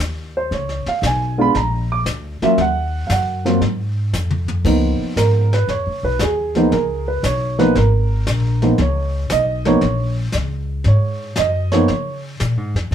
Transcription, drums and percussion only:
0.00 snare medium
0.00 hi-hat pedal medium
0.52 brush sweep soft
0.52 snare soft
0.69 snare soft
0.86 snare soft
1.03 snare medium
1.03 hi-hat pedal soft
1.55 brush sweep soft
1.55 snare soft
2.06 snare medium
2.06 hi-hat pedal soft
2.42 snare soft
2.58 brush sweep soft
2.58 snare soft
3.10 snare medium
3.10 hi-hat pedal soft
3.46 snare soft
3.61 brush sweep soft
3.61 snare soft
4.13 snare soft
4.13 hi-hat pedal medium
4.31 mid tom soft
4.48 floor tom medium
4.65 brush sweep soft
4.65 kick medium
4.65 snare soft
4.65 crash medium
5.17 snare medium
5.17 hi-hat pedal soft
5.53 snare soft
5.69 brush sweep soft
5.69 snare soft
6.19 snare medium
6.19 hi-hat pedal medium
6.55 snare soft
6.72 brush sweep soft
6.72 snare soft
7.23 snare medium
7.23 hi-hat pedal medium
7.59 snare soft
7.75 brush sweep soft
7.75 snare soft
8.27 snare medium
8.27 hi-hat pedal soft
8.62 snare soft
8.78 brush sweep soft
8.78 snare soft
9.30 snare medium
9.30 hi-hat pedal medium
9.65 snare soft
9.81 brush sweep soft
9.81 snare soft
10.32 snare medium
10.32 hi-hat pedal medium
10.84 brush sweep soft
10.84 snare soft
11.36 snare medium
11.36 hi-hat pedal medium
11.72 snare soft
11.88 brush sweep soft
11.88 snare soft
12.40 snare medium
12.40 hi-hat pedal soft
12.76 snare soft

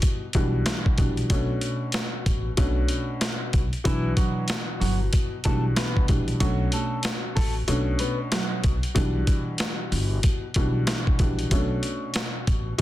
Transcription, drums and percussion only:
0.02 kick medium
0.02 closed hi-hat medium
0.33 kick medium
0.33 closed hi-hat medium
0.66 snare loud
0.66 closed hi-hat loud
0.86 kick medium
0.98 kick loud
0.98 closed hi-hat medium
1.17 closed hi-hat soft
1.30 kick loud
1.30 closed hi-hat loud
1.61 closed hi-hat medium
1.92 snare loud
1.92 closed hi-hat medium
2.26 kick medium
2.26 closed hi-hat medium
2.57 kick medium
2.57 closed hi-hat loud
2.88 closed hi-hat medium
3.21 snare loud
3.21 closed hi-hat medium
3.53 kick loud
3.53 closed hi-hat medium
3.73 closed hi-hat soft
3.85 kick loud
3.85 closed hi-hat loud
4.17 kick medium
4.17 closed hi-hat medium
4.48 snare loud
4.48 closed hi-hat medium
4.82 open hi-hat soft
5.13 kick medium
5.13 closed hi-hat medium
5.44 kick medium
5.44 closed hi-hat medium
5.76 snare loud
5.76 closed hi-hat medium
5.97 kick medium
6.08 kick loud
6.08 closed hi-hat medium
6.28 closed hi-hat soft
6.40 kick loud
6.40 closed hi-hat loud
6.72 closed hi-hat medium
7.03 snare loud
7.03 closed hi-hat medium
7.37 kick medium
7.37 open hi-hat soft
7.68 closed hi-hat medium
7.99 closed hi-hat medium
8.32 snare loud
8.32 closed hi-hat medium
8.64 kick loud
8.64 closed hi-hat medium
8.83 closed hi-hat soft
8.96 kick loud
8.96 closed hi-hat loud
9.27 kick medium
9.27 closed hi-hat medium
9.58 snare loud
9.58 closed hi-hat medium
9.92 open hi-hat soft
10.23 kick medium
10.23 closed hi-hat medium
10.54 kick medium
10.54 closed hi-hat medium
10.87 snare loud
10.87 closed hi-hat medium
11.07 kick medium
11.19 kick loud
11.19 closed hi-hat medium
11.39 closed hi-hat soft
11.51 kick loud
11.51 closed hi-hat loud
11.83 closed hi-hat medium
12.14 snare loud
12.14 closed hi-hat medium
12.47 kick medium
12.47 closed hi-hat medium
12.79 closed hi-hat medium

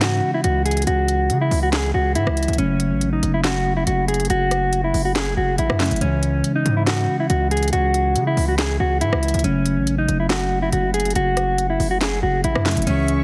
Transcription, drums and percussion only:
0.01 snare loud
0.01 clap medium
0.01 closed hi-hat medium
0.44 closed hi-hat medium
0.66 closed hi-hat medium
0.71 closed hi-hat medium
0.77 closed hi-hat medium
0.82 closed hi-hat medium
0.87 closed hi-hat medium
1.08 closed hi-hat medium
1.30 closed hi-hat medium
1.51 open hi-hat medium
1.73 snare loud
1.73 clap medium
1.73 closed hi-hat medium
2.15 closed hi-hat medium
2.27 cross-stick loud
2.37 closed hi-hat medium
2.43 closed hi-hat medium
2.48 closed hi-hat medium
2.53 closed hi-hat medium
2.58 closed hi-hat medium
2.80 closed hi-hat medium
3.01 closed hi-hat medium
3.23 closed hi-hat medium
3.44 snare loud
3.44 clap medium
3.44 closed hi-hat medium
3.87 closed hi-hat medium
4.08 closed hi-hat medium
4.14 closed hi-hat medium
4.20 closed hi-hat medium
4.25 closed hi-hat medium
4.30 closed hi-hat medium
4.51 cross-stick medium
4.51 closed hi-hat medium
4.73 closed hi-hat medium
4.94 open hi-hat medium
5.15 snare loud
5.15 clap medium
5.15 closed hi-hat medium
5.58 closed hi-hat medium
5.70 cross-stick loud
5.80 snare medium
5.80 clap medium
5.80 closed hi-hat medium
5.80 open hi-hat medium
5.86 closed hi-hat medium
5.91 closed hi-hat medium
5.96 closed hi-hat medium
6.01 closed hi-hat medium
6.23 closed hi-hat medium
6.44 closed hi-hat medium
6.66 closed hi-hat medium
6.87 snare loud
6.87 clap medium
6.87 closed hi-hat medium
7.30 closed hi-hat medium
7.51 closed hi-hat medium
7.57 closed hi-hat medium
7.63 closed hi-hat medium
7.68 closed hi-hat medium
7.73 closed hi-hat medium
7.94 closed hi-hat medium
8.16 closed hi-hat medium
8.37 open hi-hat medium
8.58 snare loud
8.58 clap medium
8.58 closed hi-hat medium
9.01 closed hi-hat medium
9.13 cross-stick loud
9.23 closed hi-hat medium
9.28 closed hi-hat medium
9.34 closed hi-hat medium
9.39 closed hi-hat medium
9.44 closed hi-hat medium
9.66 closed hi-hat medium
9.87 closed hi-hat medium
10.09 closed hi-hat medium
10.30 snare loud
10.30 clap medium
10.30 closed hi-hat medium
10.73 closed hi-hat medium
10.94 closed hi-hat medium
11.00 closed hi-hat medium
11.05 closed hi-hat medium
11.10 closed hi-hat medium
11.15 closed hi-hat medium
11.37 cross-stick medium
11.37 closed hi-hat medium
11.58 closed hi-hat medium
11.80 open hi-hat medium
12.01 snare loud
12.01 clap medium
12.01 closed hi-hat medium
12.44 closed hi-hat medium
12.55 cross-stick loud
12.65 snare loud
12.65 clap medium
12.65 closed hi-hat medium
12.65 open hi-hat medium
12.71 closed hi-hat medium
12.77 closed hi-hat medium
12.82 closed hi-hat medium
12.87 closed hi-hat medium
13.08 closed hi-hat medium

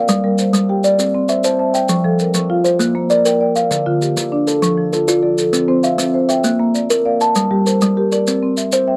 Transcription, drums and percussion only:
0.09 maracas medium
0.38 maracas medium
0.54 maracas medium
0.84 maracas medium
0.99 maracas medium
1.29 maracas medium
1.44 maracas medium
1.74 maracas medium
1.89 maracas medium
2.19 maracas medium
2.34 maracas medium
2.65 maracas medium
2.80 maracas medium
3.10 maracas medium
3.26 maracas medium
3.56 maracas medium
3.71 maracas medium
4.02 maracas medium
4.17 maracas medium
4.48 maracas soft
4.63 maracas medium
4.93 maracas medium
5.08 maracas medium
5.38 maracas medium
5.54 maracas medium
5.84 maracas medium
5.99 maracas medium
6.29 maracas medium
6.44 maracas medium
6.75 maracas medium
6.90 maracas medium
7.21 maracas medium
7.35 maracas medium
7.67 maracas medium
7.81 maracas medium
8.12 maracas medium
8.27 maracas medium
8.57 maracas medium
8.72 maracas medium

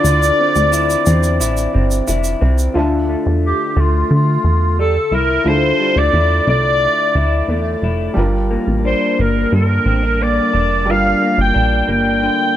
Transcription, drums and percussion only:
0.05 shaker medium
0.23 shaker medium
0.56 shaker soft
0.73 shaker medium
0.90 shaker soft
1.06 shaker medium
1.23 shaker soft
1.41 shaker medium
1.57 shaker soft
1.91 shaker soft
2.08 shaker medium
2.24 shaker soft
2.58 shaker soft

